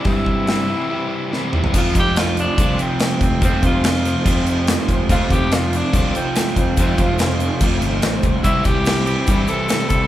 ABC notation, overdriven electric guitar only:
X:1
M:4/4
L:1/8
Q:1/4=143
K:F
V:1 name="Overdriven electric guitar" clef=bass
[C,E,G,CE]2 [C,E,G,CE] [C,E,G,CE] [C,E,G,CE]2 [C,E,G,CE] [C,E,G,CE] | [F,,C,F,A,CF]4 [F,,C,F,A,CF]4 | [F,,C,F,A,CF]4 [F,,C,F,A,CF]4 | [F,,C,F,A,CF]4 [F,,C,F,A,CF]4 |
[F,,C,F,A,CF]4 [F,,C,F,A,CF]4 | [C,E,G,CE]4 [C,E,G,CE]4 |]